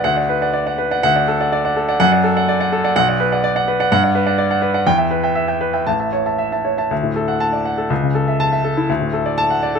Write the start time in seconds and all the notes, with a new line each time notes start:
0.04 D2 F#5
0.17 D5 F#5
0.29 B4
0.42 D5 F#5
0.53 D5
0.66 D5 F#5
0.78 B4
0.91 D5 F#5
1.03 D2 F#5
1.16 D5
1.28 A4
1.40 D5 F#5
1.52 D5
1.65 D5 F#5
1.76 A4
1.88 D5 F#5
2.00 F#2 F#5
2.12 D5 F#5
2.24 A4
2.36 D5 F#5
2.49 D5
2.60 D5 F#5
2.72 A4
2.84 D5 F#5
2.96 B1 F#5
3.08 D5 F#5
3.20 B4
3.32 D5 F#5
3.44 D5
3.56 D5 F#5
3.68 B4
3.80 D5 F#5
3.92 G2 F#5
4.04 D5 F#5
4.15 B4
4.26 D5 F#5
4.38 D5
4.50 D5 F#5
4.62 B4
4.74 D5 F#5
4.87 E2 G5
4.98 E5 G5
5.11 B4
5.23 E5 G5
5.35 E5
5.48 E5 G5
5.61 B4
5.73 E5 G5
5.87 A1 A5
6.00 E5 A5
6.13 C#5
6.26 E5 A5
6.38 E5
6.52 E5 A5
6.65 C#5
6.78 E5 A5
6.91 D2
7.03 A2
7.16 A4
7.28 F#5
7.40 A5
7.53 D5
7.65 F#5
7.78 A4
7.90 C#2
8.03 C#3
8.15 A4
8.28 E5
8.40 A5
8.53 E5
8.64 A4
8.77 E4
8.89 D2
9.01 A2
9.13 A4
9.26 D5
9.38 A5
9.50 F#5
9.63 D5
9.75 A4